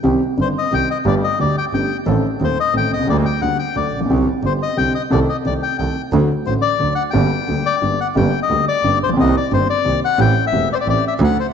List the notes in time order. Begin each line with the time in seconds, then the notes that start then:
0.03 C2 C3 D#3 G3 C4 G4
0.37 G1 G2 D#3 G3 C4 G4
0.41 C5
0.58 D#5
0.72 C2 C3 D#3 G3 C4 G4 G5
0.91 D#5
1.05 G1 G2 D3 G3 A3 G4 D5
1.24 D#5
1.39 D2 D3 G3 A3 G4 D5
1.58 G5
1.73 G1 G2 D3 G3 A3 G4 G5
2.06 A1 A2 D#3 A3 C4 A4
2.40 D#1 D#2 D#3 A3 C4 A4
2.44 C5
2.60 D#5
2.73 A1 A2 D#3 A3 C4 A4
2.77 G5
2.90 B1 C2 D#5
2.99 C2 C#2
3.07 D2 D3 G3 A#3 G4 D5
3.25 G5
3.41 D2 D3 G3 A#3 G4 F#5
3.59 G5
3.75 D2 D3 F#3 A3 F#4 D5
3.91 A#1
3.96 A1
4.01 A#1
4.05 B1 C2
4.09 C2 C3 D3 G3 C4 G4
4.43 G1 G2 D3 G3 C4 G4 C5
4.62 D#5
4.77 C2 C3 D3 G3 C4 G4 G5
4.95 D#5
5.10 C2 C3 D#3 A3 C4 A4 D5
5.29 D#5
5.45 C2 C3 D#3 A3 C4 A4 D5
5.63 G5
5.79 C2 C3 D#3 A3 C4 A4 G5
6.13 D2 D3 F#3 A3 F#4
6.46 A1 A2 D3 F#3 A3 F#4 C5
6.62 D5
6.79 D2 D3 F#3 A3 F#4
6.95 F#5
7.11 G1 G2 D3 G3 A#3 G4 G5
7.48 D2 D3 G3 A#3 G4
7.66 D5
7.81 G1 G2 D3 G3 A#3 G4
8.01 F#5
8.15 G1 G2 D3 G3 A#3 G4 G5
8.43 D#5
8.49 D2 D3 G3 A#3 G4
8.68 D5
8.83 G1 G2 D3 G3 A#3 G4
9.01 A1 A#1 C5
9.09 A#1
9.13 B1 C2 C3 D#3 A#3 C4 G4
9.18 C2 D#5
9.37 D5
9.51 G1 G2 D#3 A#3 C4 G4 C5
9.70 D5
9.84 C2 C3 D#3 A#3 C4 G4
10.05 F#5
10.18 A1 A2 E3 A3 C4 G4 G5
10.47 E5
10.52 E1 E2 E3 A3 C4 G4
10.73 C5 D5
10.81 D5
10.86 A1 A2 E3 A3 C4 G4 D5
11.08 E5
11.19 D2 D3 F#3 A3 F#4
11.24 F#5
11.40 C5